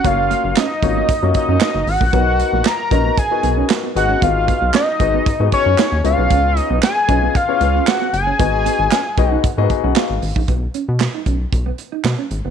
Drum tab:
HH |x-x-x-x-x-x-x-o-|x-x-x-x-x-x-x-x-|x-x-x-x-x-x-x-x-|x-x-x-x-x-x-x-x-|
CP |----x-------x---|----x-------x---|----x-------x---|----x-------x---|
SD |----o-------o---|----o-------o---|----o-------o---|----o-------o---|
BD |o-----o-o-o----o|o-----o-o-------|o-o---o-o-o-----|o-----o-o-------|

HH |x-x-x-x-x-x-x-o-|x-x-x-x-x-x-x-x-|
CP |----x-------x---|----x-------x---|
SD |----o-------o---|----o-------o---|
BD |o-----o-o-o----o|o-----o-o-------|